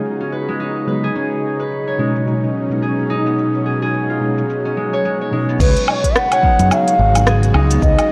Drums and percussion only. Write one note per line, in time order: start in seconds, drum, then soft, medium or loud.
0.05 shaker medium
0.21 shaker soft
0.49 shaker medium
0.61 shaker medium
0.77 shaker soft
1.04 shaker medium
1.16 shaker soft
1.32 shaker soft
1.60 shaker medium
1.71 shaker soft
1.88 shaker soft
2.16 shaker medium
2.27 shaker soft
2.43 shaker soft
2.71 shaker medium
2.83 shaker medium
2.99 shaker soft
3.26 shaker medium
3.38 shaker medium
3.54 shaker soft
3.82 shaker medium
3.94 shaker medium
4.10 shaker soft
4.38 shaker medium
4.50 shaker medium
4.66 shaker soft
4.93 shaker medium
5.05 shaker medium
5.21 shaker soft
5.49 shaker medium
5.60 kick loud
5.60 crash loud
5.60 shaker medium
5.77 closed hi-hat soft
5.77 shaker soft
5.88 low woodblock medium
6.04 kick medium
6.04 cajon slap soft
6.04 closed hi-hat medium
6.04 shaker medium
6.16 cross-stick loud
6.16 shaker medium
6.32 closed hi-hat soft
6.32 low woodblock medium
6.32 shaker soft
6.43 kick loud
6.59 closed hi-hat medium
6.59 shaker medium
6.71 low woodblock medium
6.71 shaker medium
6.88 closed hi-hat soft
6.88 shaker soft
7.15 closed hi-hat medium
7.15 low woodblock medium
7.15 shaker medium
7.27 cross-stick loud
7.27 shaker medium
7.43 closed hi-hat soft
7.43 shaker soft
7.54 low woodblock medium
7.71 closed hi-hat medium
7.71 shaker medium
7.82 kick loud
7.82 shaker medium
7.99 closed hi-hat soft
7.99 low woodblock medium
7.99 shaker soft